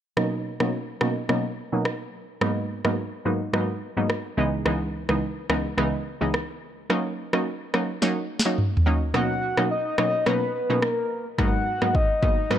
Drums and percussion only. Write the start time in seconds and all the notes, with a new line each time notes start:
0.17 cross-stick
0.60 cross-stick
1.01 cross-stick
1.29 cross-stick
1.85 cross-stick
2.41 cross-stick
2.85 cross-stick
3.54 cross-stick
4.10 cross-stick
4.66 cross-stick
5.09 cross-stick
5.50 cross-stick
5.78 cross-stick
6.34 cross-stick
6.90 cross-stick
7.33 cross-stick
7.74 cross-stick
8.02 snare
8.39 snare
8.58 mid tom
8.77 floor tom
9.14 cross-stick
9.57 cross-stick
9.98 cross-stick
10.26 cross-stick
10.82 cross-stick
11.39 kick, cross-stick
11.82 cross-stick
11.95 kick
12.23 kick
12.51 cross-stick